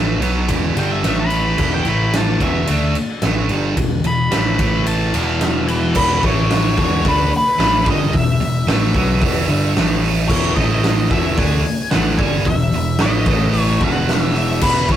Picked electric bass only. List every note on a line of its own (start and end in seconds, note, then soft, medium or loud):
0.00 0.19 A1 medium
0.19 0.46 B1 loud
0.48 0.74 E1 loud
0.76 1.01 G1 medium
1.04 1.55 A1 loud
1.58 1.84 E1 loud
1.85 2.36 A1 medium
2.41 2.66 E1 loud
2.68 2.93 D2 loud
3.22 3.48 A1 loud
3.49 3.75 G1 medium
3.77 4.03 E1 medium
4.04 4.30 E1 medium
4.33 4.58 A1 loud
4.59 5.10 A1 loud
5.15 5.92 E1 medium
5.96 6.21 E1 loud
6.23 6.74 A1 medium
6.78 7.03 E1 loud
7.05 7.30 D2 loud
7.59 7.84 A1 loud
7.87 8.11 G1 loud
8.13 8.38 E1 medium
8.41 8.66 E1 medium
8.67 8.92 A1 loud
8.95 9.20 B1 loud
9.22 9.47 E1 loud
9.49 9.74 G1 loud
9.76 10.26 A1 loud
10.30 10.55 E1 loud
10.57 11.07 A1 loud
11.11 11.36 E1 loud
11.38 11.63 D2 loud
11.93 12.17 A1 loud
12.19 12.44 G1 loud
12.45 12.71 E1 loud
12.74 12.99 E1 medium
13.01 13.26 A1 loud
13.27 13.77 A1 loud
13.81 14.58 E1 medium
14.62 14.88 E1 loud
14.89 14.96 A1 medium